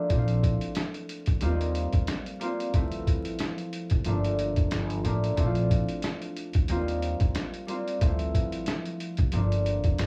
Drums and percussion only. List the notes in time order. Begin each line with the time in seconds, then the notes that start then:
0.10 kick, closed hi-hat
0.28 closed hi-hat
0.43 kick, closed hi-hat
0.61 closed hi-hat
0.75 snare, closed hi-hat
0.94 closed hi-hat
1.09 closed hi-hat
1.26 kick, closed hi-hat
1.41 closed hi-hat
1.61 closed hi-hat
1.75 closed hi-hat
1.93 kick, closed hi-hat
2.07 snare, closed hi-hat
2.26 closed hi-hat
2.41 closed hi-hat
2.60 closed hi-hat
2.74 kick, closed hi-hat
2.92 closed hi-hat
3.07 kick, closed hi-hat
3.25 closed hi-hat
3.39 snare, closed hi-hat
3.58 closed hi-hat
3.73 closed hi-hat
3.90 kick, closed hi-hat
4.05 closed hi-hat
4.24 closed hi-hat
4.39 closed hi-hat
4.56 kick, closed hi-hat
4.71 snare, closed hi-hat
4.90 closed hi-hat
5.05 closed hi-hat
5.24 closed hi-hat
5.37 kick, closed hi-hat
5.55 closed hi-hat
5.71 kick, closed hi-hat
5.89 closed hi-hat
6.02 snare, closed hi-hat
6.22 closed hi-hat
6.36 closed hi-hat
6.53 kick, closed hi-hat
6.68 closed hi-hat
6.88 closed hi-hat
7.02 closed hi-hat
7.20 kick, closed hi-hat
7.35 snare, closed hi-hat
7.54 closed hi-hat
7.68 closed hi-hat
7.88 closed hi-hat
8.01 kick, closed hi-hat
8.19 closed hi-hat
8.35 kick, closed hi-hat
8.52 closed hi-hat
8.66 snare, closed hi-hat
8.86 closed hi-hat
9.00 closed hi-hat
9.17 kick, closed hi-hat
9.32 closed hi-hat
9.52 closed hi-hat
9.66 closed hi-hat
9.84 kick, closed hi-hat
9.98 snare, closed hi-hat